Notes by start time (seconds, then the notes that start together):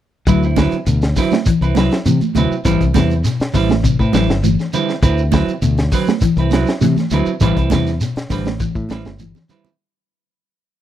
0.27 D2 F#3 E4 B4, muted clean electric guitar stroke, kick, closed hi-hat, high conga, low conga, shekere
0.43 C4 E4, shekere
0.56 D3 F#3 C4 E4 B4, kick, snare, closed hi-hat, high conga, shekere
0.72 muted fingered electric bass stroke, closed hi-hat, shekere
0.86 D2 B2, closed hi-hat, high conga, shekere
1.02 snare, closed hi-hat, shekere
1.16 D3 F#3 C4 E4 B4, kick, open hi-hat, low conga, shekere
1.32 snare, high conga, shekere
1.46 E3, muted fingered electric bass stroke, kick, closed hi-hat, shekere
1.61 C2 C4 E4 B4, closed hi-hat, shekere
1.75 F#3 C4 E4 B4, snare, closed hi-hat, high conga, low conga, shekere
1.91 snare, closed hi-hat, shekere
2.06 C3 E3, closed hi-hat, high conga, shekere
2.21 muted fingered electric bass stroke, closed hi-hat, high conga, shekere
2.35 D2 C3 F#3 C4 E4 B4, closed hi-hat, high conga, low conga, shekere
2.52 shekere
2.65 A1 E3 G3 C4 E4 B4, kick, closed hi-hat, high conga, shekere
2.81 C2, kick, closed hi-hat, shekere
2.94 E2 C3 G3 C4 E4 B4, kick, snare, closed hi-hat, high conga, shekere
3.11 closed hi-hat, shekere
3.24 B2, snare, closed hi-hat, high conga, shekere
3.40 muted fingered electric bass stroke, snare, closed hi-hat, shekere
3.53 A1 D3 G3 C4 E4 B4, kick, open hi-hat, low conga, shekere
3.69 snare, high conga, shekere
3.83 C3, kick, closed hi-hat, shekere
3.99 A2 C4 E4 B4, kick, shekere
4.13 A1 F#3 G3 C4 E4 B4, snare, closed hi-hat, high conga, low conga, shekere
4.29 G1, snare, shekere
4.43 E3, closed hi-hat, high conga, shekere
4.59 snare, shekere
4.73 D3 G3 C4 E4 B4, closed hi-hat, low conga, shekere
4.89 snare, shekere
5.02 D2 C4 E4 B4, muted clean electric guitar stroke, kick, closed hi-hat, high conga, shekere
5.18 shekere
5.32 D3 F#3 C4 E4 B4, kick, snare, closed hi-hat, high conga, shekere
5.47 muted fingered electric bass stroke, closed hi-hat, shekere
5.61 D2 B2, closed hi-hat, high conga, shekere
5.77 snare, closed hi-hat, shekere
5.92 D3 F#3 C4 B4, muted clean electric guitar stroke, kick, open hi-hat, low conga, shekere
6.07 snare, high conga, shekere
6.21 E3, muted fingered electric bass stroke, kick, closed hi-hat, high conga, shekere
6.36 C2 E4 B4, closed hi-hat, shekere
6.40 C4
6.51 F#3 C4 E4 B4, snare, closed hi-hat, high conga, shekere
6.67 snare, closed hi-hat, shekere
6.81 C3 E3, snare, closed hi-hat, high conga, shekere
6.96 muted fingered electric bass stroke, snare, closed hi-hat, high conga, shekere
7.11 D2 D3 F#3 C4 E4 B4, closed hi-hat, low conga, shekere
7.26 muted fingered electric bass stroke, shekere
7.41 A1 E3 G3 C4 E4 B4, kick, closed hi-hat, high conga, low conga, shekere
7.57 C2 C4 E4 B4, kick, closed hi-hat, shekere
7.70 E2 C3 G3 C4 E4 B4, kick, snare, closed hi-hat, high conga, shekere
7.86 snare, closed hi-hat, shekere
8.00 B2, snare, closed hi-hat, high conga, shekere
8.16 muted fingered electric bass stroke, snare, closed hi-hat, shekere
8.30 A1 D3 G3 C4 B4, muted clean electric guitar stroke, kick, open hi-hat, low conga, shekere
8.45 snare, high conga, shekere
8.60 E3, kick, closed hi-hat, shekere
8.75 A2, kick, shekere
8.89 A1 G3 A3 C4 E4 B4, snare, closed hi-hat, high conga, shekere
9.05 G1, snare, high conga, shekere
9.19 E3, closed hi-hat, high conga, shekere
9.35 snare, low conga, shekere
9.49 D3 G3 C4 E4 B4, closed hi-hat, low conga, shekere
9.65 low conga, shekere